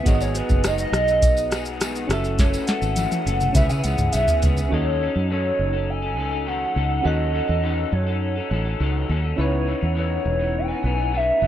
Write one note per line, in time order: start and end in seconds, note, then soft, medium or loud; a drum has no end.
0.03 0.41 G#1 medium
0.03 0.35 G#2 medium
0.03 0.35 D#3 medium
0.03 0.33 F#3 medium
0.03 2.04 B3 medium
0.03 2.05 F#4 medium
0.03 2.06 G#4 medium
0.03 0.23 D#5 medium
0.03 kick loud
0.03 closed hi-hat medium
0.03 tambourine soft
0.03 shaker medium
0.07 0.35 B3 medium
0.07 0.36 D#4 medium
0.07 0.36 G#4 medium
0.07 0.13 C#5 medium
0.15 2.10 D#5 medium
0.20 0.38 C#5 medium
0.20 tambourine medium
0.20 shaker soft
0.35 0.64 F#3 medium
0.35 0.64 B3 medium
0.35 0.64 D#4 medium
0.35 0.65 G#4 medium
0.35 0.68 B4 medium
0.35 closed hi-hat medium
0.35 shaker medium
0.49 0.85 F#1 medium
0.49 kick medium
0.49 tambourine soft
0.49 shaker soft
0.63 0.93 G#2 medium
0.63 0.93 D#3 medium
0.63 0.92 F#3 medium
0.63 0.93 B3 medium
0.63 0.94 D#4 medium
0.63 0.94 G#4 medium
0.63 0.80 D#5 loud
0.63 cross-stick medium
0.63 closed hi-hat medium
0.63 tambourine medium
0.63 shaker medium
0.78 1.63 D#5 medium
0.78 shaker medium
0.92 2.05 B1 medium
0.92 1.08 F#3 medium
0.92 1.08 B3 medium
0.92 1.07 D#4 medium
0.92 cross-stick medium
0.92 closed hi-hat soft
0.92 shaker soft
0.97 1.06 G#4 medium
1.07 1.49 F#3 soft
1.07 1.50 B3 soft
1.07 1.52 D#4 soft
1.07 1.51 G#4 medium
1.07 shaker soft
1.22 kick loud
1.22 closed hi-hat medium
1.22 tambourine soft
1.22 shaker medium
1.37 tambourine soft
1.37 shaker soft
1.50 1.80 F#3 medium
1.50 1.80 B3 medium
1.50 1.81 D#4 medium
1.50 1.81 G#4 medium
1.50 cross-stick medium
1.50 closed hi-hat medium
1.50 tambourine medium
1.50 shaker medium
1.65 shaker medium
1.80 2.10 G#2 medium
1.80 2.10 D#3 medium
1.80 2.09 F#3 medium
1.80 2.10 B3 medium
1.80 2.10 D#4 medium
1.80 2.11 G#4 medium
1.80 cross-stick medium
1.80 closed hi-hat medium
1.80 tambourine medium
1.80 shaker medium
1.96 tambourine soft
1.96 shaker medium
2.07 2.56 F#1 medium
2.07 2.24 E3 medium
2.07 2.25 A3 medium
2.07 3.51 C#4 medium
2.07 3.52 F#4 medium
2.07 3.53 A4 medium
2.07 cross-stick loud
2.07 closed hi-hat soft
2.07 tambourine soft
2.07 shaker medium
2.12 2.24 C#4 medium
2.12 2.22 A4 medium
2.12 3.54 E5 medium
2.23 2.39 E3 soft
2.23 2.39 A3 soft
2.23 2.39 C#4 medium
2.23 2.38 A4 soft
2.23 tambourine soft
2.23 shaker soft
2.39 2.68 F#2 medium
2.39 2.68 C#3 medium
2.39 2.66 E3 medium
2.39 2.67 A3 medium
2.39 2.68 C#4 medium
2.39 2.69 A4 medium
2.39 2.66 C#5 medium
2.39 kick loud
2.39 snare medium
2.39 closed hi-hat medium
2.39 tambourine soft
2.39 shaker medium
2.54 tambourine medium
2.54 shaker medium
2.67 2.96 E3 medium
2.67 2.97 A3 medium
2.67 2.97 C#4 medium
2.67 2.98 A4 medium
2.67 3.51 F#5 loud
2.67 snare medium
2.67 closed hi-hat medium
2.67 shaker medium
2.82 3.05 G#1 medium
2.82 tambourine soft
2.82 shaker soft
2.96 3.26 F#2 medium
2.96 3.26 C#3 medium
2.96 3.24 E3 medium
2.96 3.25 A3 medium
2.96 3.27 C#4 medium
2.96 3.27 A4 medium
2.96 closed hi-hat medium
2.96 high tom medium
2.96 tambourine medium
2.96 shaker medium
3.12 high tom medium
3.12 shaker medium
3.25 3.50 F#1 loud
3.25 3.40 E3 medium
3.25 3.41 A3 medium
3.25 3.40 C#4 medium
3.25 3.39 A4 medium
3.25 closed hi-hat medium
3.25 shaker soft
3.40 3.54 E3 soft
3.40 3.56 A3 medium
3.40 3.56 C#4 soft
3.40 3.55 A4 medium
3.40 mid tom medium
3.40 shaker soft
3.53 3.67 C#2 loud
3.53 3.84 C#3 medium
3.53 3.83 E3 medium
3.53 3.84 B3 medium
3.53 4.67 C#4 medium
3.53 4.69 G#4 medium
3.53 4.70 B4 medium
3.53 3.71 E5 loud
3.53 kick medium
3.53 closed hi-hat medium
3.53 mid tom medium
3.53 tambourine soft
3.53 shaker medium
3.57 3.85 C#4 medium
3.57 3.85 G#4 medium
3.57 4.71 E5 medium
3.69 3.82 C#3 loud
3.69 3.84 G#5 loud
3.69 tambourine soft
3.69 shaker medium
3.83 3.96 C#2 loud
3.83 4.13 E3 medium
3.83 4.14 B3 medium
3.83 4.15 C#4 medium
3.83 4.14 F#5 loud
3.83 closed hi-hat medium
3.83 tambourine medium
3.83 shaker medium
3.87 4.15 G#4 medium
3.98 4.11 C#2 medium
3.98 mid tom medium
3.98 tambourine soft
3.98 shaker medium
4.12 4.25 B1 medium
4.12 4.43 C#3 medium
4.12 4.41 E3 medium
4.12 4.43 B3 medium
4.12 4.44 C#4 medium
4.12 4.71 E5 medium
4.12 closed hi-hat medium
4.12 tambourine medium
4.12 shaker medium
4.16 4.44 G#4 medium
4.28 floor tom medium
4.28 shaker medium
4.42 4.66 C#2 medium
4.42 4.57 E3 medium
4.42 4.58 B3 medium
4.42 4.58 C#4 medium
4.42 4.56 G#4 medium
4.42 closed hi-hat soft
4.42 floor tom loud
4.42 tambourine soft
4.42 shaker soft
4.57 4.73 B3 soft
4.57 4.72 C#4 soft
4.57 4.72 G#4 medium
4.57 floor tom medium
4.57 tambourine soft
4.57 shaker soft
4.69 5.07 D#2 medium
4.69 5.01 D#3 medium
4.69 6.99 C#4 medium
4.69 7.00 F#4 medium
4.69 7.01 A4 medium
4.73 4.99 F#3 medium
4.73 5.00 C#4 medium
4.73 5.01 D#4 medium
4.73 5.02 A4 medium
4.73 5.27 C#5 loud
4.73 7.02 D#5 medium
5.00 5.15 F#3 medium
5.00 5.16 C#4 medium
5.00 5.16 D#4 medium
5.00 5.13 A4 medium
5.15 5.51 F#2 medium
5.15 5.30 C#4 soft
5.15 5.30 D#4 medium
5.15 5.30 A4 soft
5.30 5.74 D#3 medium
5.30 5.74 F#3 medium
5.30 5.74 C#4 medium
5.30 5.74 D#4 medium
5.30 5.72 A4 medium
5.30 5.91 C#5 loud
5.59 6.17 F#1 medium
5.73 6.04 C#4 soft
5.73 6.03 D#4 soft
5.73 6.01 A4 medium
5.90 6.49 G#5 loud
6.02 6.17 C#4 soft
6.02 6.18 D#4 soft
6.02 6.17 A4 medium
6.16 6.64 C#2 medium
6.16 6.32 F#3 medium
6.16 6.32 C#4 medium
6.16 6.32 D#4 medium
6.16 6.30 A4 medium
6.31 6.46 C#4 soft
6.31 6.47 D#4 medium
6.31 6.46 A4 medium
6.46 6.76 D#3 medium
6.46 6.73 F#3 medium
6.46 6.74 C#4 medium
6.46 6.76 D#4 medium
6.46 6.76 A4 medium
6.46 7.05 F#5 medium
6.74 6.99 C#2 medium
6.74 7.03 F#3 soft
6.74 7.04 C#4 medium
6.74 7.04 D#4 medium
6.74 7.05 A4 medium
7.02 7.40 D#2 loud
7.02 7.34 D#3 medium
7.02 7.30 F#3 medium
7.02 9.33 C#4 medium
7.02 7.32 C#4 medium
7.02 7.33 D#4 medium
7.02 9.34 F#4 medium
7.02 9.34 A4 medium
7.02 7.34 A4 medium
7.02 7.94 D#5 loud
7.07 9.35 F#5 medium
7.32 7.47 F#3 medium
7.32 7.48 C#4 medium
7.32 7.48 D#4 medium
7.32 7.46 A4 medium
7.47 7.84 E2 medium
7.47 7.62 C#4 soft
7.47 7.64 D#4 soft
7.47 7.63 A4 medium
7.62 8.07 D#3 medium
7.62 8.07 F#3 medium
7.62 8.07 C#4 medium
7.62 8.07 D#4 medium
7.62 8.05 A4 medium
7.92 8.39 F#2 medium
7.92 8.21 C#5 medium
8.07 8.38 C#4 soft
8.07 8.36 D#4 soft
8.07 8.34 A4 medium
8.22 9.05 C#5 medium
8.36 8.50 C#4 soft
8.36 8.51 D#4 medium
8.36 8.50 A4 soft
8.50 8.74 A1 loud
8.50 8.65 F#3 medium
8.50 8.66 C#4 medium
8.50 8.66 D#4 medium
8.50 8.64 A4 medium
8.65 8.80 C#4 soft
8.65 8.80 D#4 soft
8.65 8.80 A4 medium
8.80 9.03 C#2 medium
8.80 9.09 D#3 medium
8.80 9.07 F#3 medium
8.80 9.08 C#4 medium
8.80 9.09 D#4 medium
8.80 9.10 A4 medium
9.08 9.33 D#2 medium
9.08 9.23 F#3 medium
9.08 9.24 C#4 medium
9.08 9.24 D#4 medium
9.08 9.22 A4 medium
9.23 9.38 C#4 soft
9.23 9.38 D#4 soft
9.23 9.38 A4 soft
9.36 9.73 C#2 medium
9.36 9.65 C#3 medium
9.36 9.66 E3 medium
9.36 9.68 B3 medium
9.36 11.47 C#4 medium
9.36 9.68 D#4 medium
9.36 11.47 E4 medium
9.36 11.47 B4 medium
9.36 9.93 C#5 medium
9.41 11.47 C#5 medium
9.66 9.81 C#3 medium
9.66 9.82 E3 medium
9.66 9.82 B3 medium
9.66 9.80 D#4 medium
9.81 10.17 E2 medium
9.81 9.95 E3 soft
9.81 9.96 B3 soft
9.81 9.96 D#4 medium
9.95 10.40 C#3 medium
9.95 10.40 E3 medium
9.95 10.40 B3 medium
9.95 10.38 D#4 medium
9.99 10.60 C#5 loud
10.25 10.72 E1 medium
10.39 10.71 E3 soft
10.39 10.69 B3 medium
10.39 10.67 D#4 medium
10.58 11.18 G#5 loud
10.68 10.83 E3 soft
10.68 10.84 B3 medium
10.68 10.83 D#4 medium
10.83 11.30 B1 medium
10.83 10.98 C#3 medium
10.83 10.99 E3 medium
10.83 10.99 B3 medium
10.83 10.97 D#4 medium
10.98 11.12 E3 soft
10.98 11.13 B3 medium
10.98 11.13 D#4 medium
11.12 11.40 C#3 medium
11.12 11.41 E3 medium
11.12 11.42 B3 medium
11.12 11.43 D#4 medium
11.17 11.47 E5 loud
11.41 11.47 F#1 medium
11.41 11.47 C#3 medium
11.41 11.47 E3 medium
11.41 11.47 B3 medium